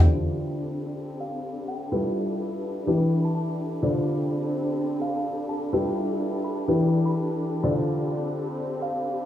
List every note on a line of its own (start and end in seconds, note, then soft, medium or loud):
0.00 1.90 D3 medium
0.00 9.25 D4 medium
0.00 1.90 F4 medium
0.00 2.87 G4 medium
0.00 1.90 A4 medium
0.00 9.25 A4 medium
0.00 1.90 C5 medium
0.00 1.90 D5 medium
0.00 9.25 B5 medium
0.63 1.92 C4 medium
1.21 1.39 F5 medium
1.68 1.86 G5 medium
1.92 2.85 G3 medium
1.92 2.85 E4 medium
1.92 2.85 F4 medium
1.92 2.85 G4 medium
1.92 2.85 A4 medium
1.92 2.85 B4 medium
2.36 3.83 B4 medium
2.87 3.80 E3 medium
2.87 3.83 E3 medium
2.87 3.80 D4 medium
2.87 3.80 E4 medium
2.87 3.80 G4 medium
2.87 3.80 B4 medium
3.25 3.31 A5 medium
3.31 9.25 G4 medium
3.31 3.44 A5 medium
3.82 5.71 D3 medium
3.82 5.71 F4 medium
3.82 5.71 A4 medium
3.82 5.71 C5 medium
3.82 5.71 D5 medium
4.11 5.73 C4 medium
5.02 5.20 F5 medium
5.49 5.67 A5 medium
5.73 6.66 G3 medium
5.73 6.66 E4 medium
5.73 6.66 F4 medium
5.73 6.66 G4 medium
5.73 6.66 A4 medium
5.73 6.66 B4 medium
5.93 7.63 B4 medium
6.44 6.63 B5 medium
6.68 7.61 E3 medium
6.68 7.63 E3 medium
6.68 7.61 D4 medium
6.68 7.61 E4 medium
6.68 7.61 G4 medium
6.68 7.61 B4 medium
7.06 7.40 B5 medium
7.63 9.25 D3 medium
7.63 9.25 F4 medium
7.63 9.25 A4 medium
7.63 9.25 C5 medium
7.63 9.25 D5 medium
8.13 9.25 C4 medium
8.82 9.01 F5 medium